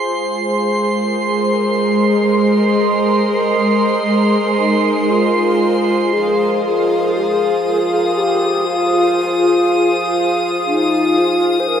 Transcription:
0, 0, Header, 1, 5, 480
1, 0, Start_track
1, 0, Key_signature, -4, "minor"
1, 0, Tempo, 1008403
1, 5, Time_signature, 3, 2, 24, 8
1, 1445, Tempo, 1025641
1, 3365, Tempo, 1005025
1, 5591, End_track
2, 0, Start_track
2, 0, Title_t, "Synth texture"
2, 0, Program_c, 0, 99
2, 0, Note_on_c, 0, 84, 74
2, 2893, Note_on_c, 0, 87, 81
2, 2903, Note_off_c, 0, 84, 0
2, 5591, Note_off_c, 0, 87, 0
2, 5591, End_track
3, 0, Start_track
3, 0, Title_t, "Ambient pad"
3, 0, Program_c, 1, 92
3, 0, Note_on_c, 1, 65, 75
3, 0, Note_on_c, 1, 68, 85
3, 0, Note_on_c, 1, 72, 62
3, 9, Note_on_c, 1, 56, 86
3, 322, Note_on_c, 1, 70, 81
3, 636, Note_off_c, 1, 65, 0
3, 711, Note_on_c, 1, 75, 80
3, 2891, Note_off_c, 1, 56, 0
3, 2901, Note_on_c, 1, 65, 76
3, 3488, Note_off_c, 1, 75, 0
3, 4038, Note_off_c, 1, 70, 0
3, 5591, Note_off_c, 1, 65, 0
3, 5591, Note_off_c, 1, 68, 0
3, 5591, Note_off_c, 1, 72, 0
3, 5591, End_track
4, 0, Start_track
4, 0, Title_t, "Alto flute"
4, 0, Program_c, 2, 73
4, 2166, Note_on_c, 2, 63, 73
4, 2413, Note_on_c, 2, 65, 84
4, 2420, Note_off_c, 2, 63, 0
4, 2893, Note_on_c, 2, 68, 87
4, 2900, Note_off_c, 2, 65, 0
4, 3129, Note_off_c, 2, 68, 0
4, 3138, Note_on_c, 2, 68, 76
4, 3354, Note_off_c, 2, 68, 0
4, 3371, Note_on_c, 2, 68, 90
4, 3831, Note_off_c, 2, 68, 0
4, 3849, Note_on_c, 2, 67, 86
4, 4093, Note_on_c, 2, 65, 97
4, 4100, Note_off_c, 2, 67, 0
4, 4923, Note_off_c, 2, 65, 0
4, 5052, Note_on_c, 2, 63, 79
4, 5298, Note_on_c, 2, 65, 83
4, 5305, Note_off_c, 2, 63, 0
4, 5495, Note_on_c, 2, 72, 64
4, 5502, Note_off_c, 2, 65, 0
4, 5534, Note_on_c, 2, 70, 114
4, 5541, Note_off_c, 2, 72, 0
4, 5591, Note_off_c, 2, 70, 0
4, 5591, End_track
5, 0, Start_track
5, 0, Title_t, "Harmonium"
5, 0, Program_c, 3, 20
5, 2901, Note_on_c, 3, 53, 61
5, 2902, Note_on_c, 3, 65, 59
5, 5591, Note_off_c, 3, 53, 0
5, 5591, Note_off_c, 3, 65, 0
5, 5591, End_track
0, 0, End_of_file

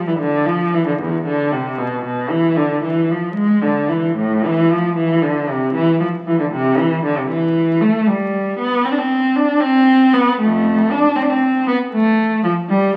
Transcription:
0, 0, Header, 1, 2, 480
1, 0, Start_track
1, 0, Tempo, 530035
1, 907, Time_signature, 12, 3, 24, 8
1, 4738, Tempo, 515464
1, 11938, End_track
2, 0, Start_track
2, 0, Title_t, "Cello"
2, 0, Program_c, 0, 42
2, 68, Note_on_c, 0, 52, 65
2, 114, Note_off_c, 0, 52, 0
2, 178, Note_on_c, 0, 50, 74
2, 415, Note_on_c, 0, 53, 68
2, 416, Note_off_c, 0, 50, 0
2, 662, Note_off_c, 0, 53, 0
2, 670, Note_on_c, 0, 52, 72
2, 788, Note_on_c, 0, 50, 60
2, 789, Note_off_c, 0, 52, 0
2, 905, Note_off_c, 0, 50, 0
2, 907, Note_on_c, 0, 40, 71
2, 1139, Note_off_c, 0, 40, 0
2, 1149, Note_on_c, 0, 50, 75
2, 1374, Note_on_c, 0, 48, 64
2, 1378, Note_off_c, 0, 50, 0
2, 1613, Note_off_c, 0, 48, 0
2, 1614, Note_on_c, 0, 47, 74
2, 1842, Note_off_c, 0, 47, 0
2, 1853, Note_on_c, 0, 47, 64
2, 2080, Note_on_c, 0, 52, 70
2, 2083, Note_off_c, 0, 47, 0
2, 2322, Note_on_c, 0, 50, 70
2, 2324, Note_off_c, 0, 52, 0
2, 2565, Note_on_c, 0, 52, 65
2, 2567, Note_off_c, 0, 50, 0
2, 2802, Note_off_c, 0, 52, 0
2, 2814, Note_on_c, 0, 53, 68
2, 3032, Note_on_c, 0, 56, 82
2, 3049, Note_off_c, 0, 53, 0
2, 3274, Note_off_c, 0, 56, 0
2, 3280, Note_on_c, 0, 50, 70
2, 3524, Note_on_c, 0, 52, 64
2, 3530, Note_off_c, 0, 50, 0
2, 3772, Note_on_c, 0, 45, 70
2, 3780, Note_off_c, 0, 52, 0
2, 4017, Note_off_c, 0, 45, 0
2, 4034, Note_on_c, 0, 52, 77
2, 4261, Note_on_c, 0, 53, 75
2, 4267, Note_off_c, 0, 52, 0
2, 4499, Note_off_c, 0, 53, 0
2, 4499, Note_on_c, 0, 52, 76
2, 4731, Note_off_c, 0, 52, 0
2, 4733, Note_on_c, 0, 50, 70
2, 4975, Note_off_c, 0, 50, 0
2, 4978, Note_on_c, 0, 48, 67
2, 5216, Note_off_c, 0, 48, 0
2, 5220, Note_on_c, 0, 52, 78
2, 5452, Note_off_c, 0, 52, 0
2, 5455, Note_on_c, 0, 53, 64
2, 5529, Note_off_c, 0, 53, 0
2, 5707, Note_on_c, 0, 52, 71
2, 5820, Note_off_c, 0, 52, 0
2, 5823, Note_on_c, 0, 50, 67
2, 5870, Note_off_c, 0, 50, 0
2, 5940, Note_on_c, 0, 48, 81
2, 6176, Note_off_c, 0, 48, 0
2, 6179, Note_on_c, 0, 52, 75
2, 6419, Note_on_c, 0, 50, 77
2, 6422, Note_off_c, 0, 52, 0
2, 6541, Note_off_c, 0, 50, 0
2, 6550, Note_on_c, 0, 48, 68
2, 6657, Note_on_c, 0, 52, 74
2, 6669, Note_off_c, 0, 48, 0
2, 7133, Note_off_c, 0, 52, 0
2, 7140, Note_on_c, 0, 57, 78
2, 7382, Note_on_c, 0, 55, 69
2, 7384, Note_off_c, 0, 57, 0
2, 7865, Note_on_c, 0, 59, 75
2, 7867, Note_off_c, 0, 55, 0
2, 8103, Note_off_c, 0, 59, 0
2, 8110, Note_on_c, 0, 60, 66
2, 8167, Note_on_c, 0, 62, 61
2, 8173, Note_off_c, 0, 60, 0
2, 8232, Note_on_c, 0, 60, 69
2, 8233, Note_off_c, 0, 62, 0
2, 8580, Note_on_c, 0, 62, 77
2, 8587, Note_off_c, 0, 60, 0
2, 8809, Note_on_c, 0, 60, 91
2, 8823, Note_off_c, 0, 62, 0
2, 9297, Note_off_c, 0, 60, 0
2, 9303, Note_on_c, 0, 59, 82
2, 9544, Note_off_c, 0, 59, 0
2, 9550, Note_on_c, 0, 57, 80
2, 9556, Note_on_c, 0, 41, 68
2, 9998, Note_off_c, 0, 41, 0
2, 10019, Note_off_c, 0, 57, 0
2, 10029, Note_on_c, 0, 62, 87
2, 10259, Note_on_c, 0, 60, 76
2, 10267, Note_off_c, 0, 62, 0
2, 10317, Note_on_c, 0, 62, 63
2, 10325, Note_off_c, 0, 60, 0
2, 10385, Note_off_c, 0, 62, 0
2, 10389, Note_on_c, 0, 60, 76
2, 10740, Note_on_c, 0, 59, 78
2, 10741, Note_off_c, 0, 60, 0
2, 10814, Note_off_c, 0, 59, 0
2, 10978, Note_on_c, 0, 57, 83
2, 11447, Note_off_c, 0, 57, 0
2, 11450, Note_on_c, 0, 53, 78
2, 11524, Note_off_c, 0, 53, 0
2, 11687, Note_on_c, 0, 55, 92
2, 11927, Note_off_c, 0, 55, 0
2, 11938, End_track
0, 0, End_of_file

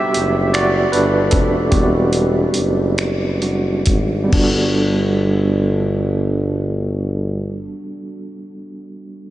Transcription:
0, 0, Header, 1, 4, 480
1, 0, Start_track
1, 0, Key_signature, 1, "major"
1, 0, Tempo, 782269
1, 1055, Time_signature, 6, 3, 24, 8
1, 1055, Tempo, 845070
1, 2015, Tempo, 938967
1, 5027, End_track
2, 0, Start_track
2, 0, Title_t, "Tine electric piano"
2, 0, Program_c, 0, 4
2, 0, Control_c, 0, 64, 127
2, 0, Note_on_c, 0, 55, 41
2, 0, Note_on_c, 0, 59, 58
2, 0, Note_on_c, 0, 62, 41
2, 0, Note_on_c, 0, 66, 52
2, 0, Note_on_c, 0, 67, 75
2, 0, Note_on_c, 0, 76, 97
2, 308, Note_off_c, 0, 76, 0
2, 310, Note_off_c, 0, 67, 0
2, 329, Note_on_c, 0, 74, 89
2, 338, Note_off_c, 0, 66, 0
2, 338, Note_on_c, 0, 66, 68
2, 551, Note_off_c, 0, 74, 0
2, 556, Note_off_c, 0, 66, 0
2, 566, Note_on_c, 0, 71, 75
2, 577, Note_off_c, 0, 62, 0
2, 577, Note_on_c, 0, 62, 57
2, 798, Note_off_c, 0, 62, 0
2, 804, Note_on_c, 0, 69, 57
2, 816, Note_off_c, 0, 71, 0
2, 817, Note_on_c, 0, 60, 57
2, 1043, Note_off_c, 0, 60, 0
2, 1050, Note_on_c, 0, 67, 62
2, 1056, Note_off_c, 0, 55, 0
2, 1056, Note_on_c, 0, 55, 43
2, 1057, Note_on_c, 0, 62, 35
2, 1060, Note_off_c, 0, 69, 0
2, 1061, Note_on_c, 0, 66, 50
2, 1063, Note_off_c, 0, 59, 0
2, 1063, Note_on_c, 0, 59, 49
2, 1742, Note_off_c, 0, 67, 0
2, 1745, Note_off_c, 0, 55, 0
2, 1745, Note_off_c, 0, 62, 0
2, 1747, Note_off_c, 0, 66, 0
2, 1748, Note_off_c, 0, 59, 0
2, 2021, Note_on_c, 0, 62, 32
2, 2022, Note_on_c, 0, 55, 35
2, 2023, Note_on_c, 0, 66, 41
2, 2229, Note_off_c, 0, 55, 0
2, 2229, Note_off_c, 0, 62, 0
2, 2230, Note_off_c, 0, 66, 0
2, 2439, Note_on_c, 0, 55, 58
2, 2465, Note_on_c, 0, 59, 52
2, 2488, Note_on_c, 0, 62, 55
2, 2492, Control_c, 0, 64, 0
2, 2512, Note_on_c, 0, 66, 47
2, 2540, Note_on_c, 0, 69, 55
2, 2592, Control_c, 0, 64, 127
2, 4150, Note_off_c, 0, 55, 0
2, 4176, Note_off_c, 0, 59, 0
2, 4200, Note_off_c, 0, 62, 0
2, 4223, Note_off_c, 0, 66, 0
2, 4251, Note_off_c, 0, 69, 0
2, 5027, End_track
3, 0, Start_track
3, 0, Title_t, "Tuba"
3, 0, Program_c, 1, 58
3, 102, Note_on_c, 1, 30, 70
3, 548, Note_off_c, 1, 30, 0
3, 580, Note_on_c, 1, 31, 82
3, 792, Note_off_c, 1, 31, 0
3, 818, Note_on_c, 1, 29, 66
3, 1035, Note_off_c, 1, 29, 0
3, 1059, Note_on_c, 1, 28, 92
3, 1504, Note_off_c, 1, 28, 0
3, 1532, Note_on_c, 1, 30, 78
3, 1997, Note_off_c, 1, 30, 0
3, 2022, Note_on_c, 1, 30, 57
3, 2229, Note_off_c, 1, 30, 0
3, 2253, Note_on_c, 1, 32, 59
3, 2467, Note_off_c, 1, 32, 0
3, 2488, Note_on_c, 1, 31, 76
3, 4199, Note_off_c, 1, 31, 0
3, 5027, End_track
4, 0, Start_track
4, 0, Title_t, "Drums"
4, 88, Note_on_c, 9, 42, 65
4, 150, Note_off_c, 9, 42, 0
4, 332, Note_on_c, 9, 42, 54
4, 337, Note_on_c, 9, 26, 99
4, 393, Note_off_c, 9, 42, 0
4, 398, Note_off_c, 9, 26, 0
4, 572, Note_on_c, 9, 42, 44
4, 633, Note_off_c, 9, 42, 0
4, 805, Note_on_c, 9, 42, 75
4, 814, Note_on_c, 9, 36, 83
4, 866, Note_off_c, 9, 42, 0
4, 875, Note_off_c, 9, 36, 0
4, 1054, Note_on_c, 9, 42, 59
4, 1056, Note_on_c, 9, 36, 81
4, 1111, Note_off_c, 9, 42, 0
4, 1113, Note_off_c, 9, 36, 0
4, 1286, Note_on_c, 9, 42, 50
4, 1343, Note_off_c, 9, 42, 0
4, 1520, Note_on_c, 9, 42, 58
4, 1577, Note_off_c, 9, 42, 0
4, 1771, Note_on_c, 9, 42, 47
4, 1775, Note_on_c, 9, 26, 81
4, 1827, Note_off_c, 9, 42, 0
4, 1832, Note_off_c, 9, 26, 0
4, 2019, Note_on_c, 9, 42, 39
4, 2071, Note_off_c, 9, 42, 0
4, 2243, Note_on_c, 9, 42, 71
4, 2251, Note_on_c, 9, 36, 72
4, 2294, Note_off_c, 9, 42, 0
4, 2302, Note_off_c, 9, 36, 0
4, 2483, Note_on_c, 9, 49, 60
4, 2484, Note_on_c, 9, 36, 77
4, 2535, Note_off_c, 9, 36, 0
4, 2535, Note_off_c, 9, 49, 0
4, 5027, End_track
0, 0, End_of_file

